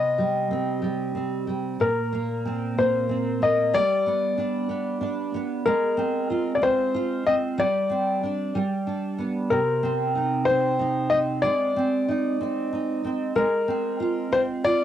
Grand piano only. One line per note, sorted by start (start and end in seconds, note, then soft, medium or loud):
0.00 1.45 D#5 medium
1.81 2.73 A#4 medium
2.79 3.44 C5 medium
3.43 3.75 D#5 medium
3.74 5.30 D5 loud
5.66 6.51 A#4 medium
6.55 6.62 D5 medium
6.63 7.22 C5 loud
7.27 7.34 D#5 medium
7.60 9.16 D5 medium
9.50 10.50 A#4 medium
10.45 11.13 C5 loud
11.10 11.17 D#5 loud
11.42 12.99 D5 medium
13.36 14.34 A#4 medium
14.33 14.40 C5 loud
14.65 14.84 D5 loud